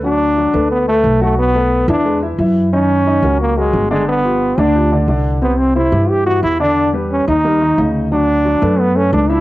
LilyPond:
<<
  \new Staff \with { instrumentName = "Grand piano" } { \time 4/4 \key d \major \tempo 4 = 178 <fis fis' fis''>4 <fis fis' fis''>8 <a a' b'>4 <a a' b'>4 <fis fis' fis''>8~ | <fis fis' fis''>8 <a a' b'>4 <e e' e''>8 <gis gis' b'>8 <e e' e''>8 <e e' e''>4 | <dis dis' dis''>4 <dis dis' dis''>8 <fis fis' ais'>4 <fis fis' ais'>4 <d d' d''>8~ | <d d' d''>8 <f f' g'>4 <d d' d''>8 <f f' g'>8 <d d' d''>8 <d d' d''>4 |
<c c' c''>4 <c c' c''>8 <e e' g'>4 <e e' g'>4 <d d' d''>8~ | <d d' d''>8 <g g' b'>4 <ees ees' ees''>8 <g g' bes'>8 <ees ees' ees''>8 <des ees' ees''>4 | <fis fis' fis''>4 <fis fis' fis''>8 <a a' b'>4 <a a' b'>4 <eis d' e''>8 | }
  \new Staff \with { instrumentName = "Trombone" } { \time 4/4 \key d \major d'2 b8 a4 a8 | b4. d'4 r4. | cis'2 ais8 gis4 gis8 | b4. d'4 r4. |
b8 c'8 e'4 g'8 fis'8 e'8 d'8~ | d'8 r8 cis'8 ees'2 r8 | d'2 b8 cis'8 d'8 e'8 | }
  \new Staff \with { instrumentName = "Upright bass" } { \clef bass \time 4/4 \key d \major d,4. d,4. b,,4~ | b,,4. e,4. fis,4~ | fis,4. cis,4. g,,4~ | g,,4. d,4. c,4~ |
c,4. g,4. e,4~ | e,4. ees,4. d,4~ | d,4. fis,4. cis,4 | }
>>